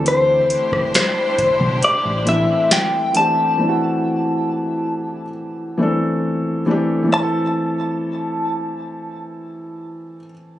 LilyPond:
<<
  \new Staff \with { instrumentName = "Clean electric guitar" } { \time 4/4 \key a \dorian \tempo 4 = 68 c''4 c''4 d''8 e''8 g''8 a''8~ | a''2.~ a''8 r8 | a''1 | }
  \new Staff \with { instrumentName = "String section" } { \time 4/4 \key a \dorian <a d' e' g' c''>1 | r1 | r1 | }
  \new Staff \with { instrumentName = "Felt piano" } { \time 4/4 \key a \dorian <e a c' d' g'>4. r4 <e a c' d' e'>4 <e a c' d' g'>8 | <e a c' d' e' fis'>2 r8 <e a c' d' a'>4 <e a c' d' g'>8 | <e a c' e' a'>1 | }
  \new Staff \with { instrumentName = "Fingered electric bass" } { \clef bass \time 4/4 \key a \dorian d,8 r4 r16 b,,16 r16 a,,8 r4 r16 | r1 | r1 | }
  \new DrumStaff \with { instrumentName = "Drums" } \drummode { \time 4/4 hh8 hh16 <bd ss>16 <hh sn>8 <hh bd>16 bd16 hh8 hh8 <hh sn>8 hh8 | r4 r4 r4 r4 | r4 r4 r4 r4 | }
>>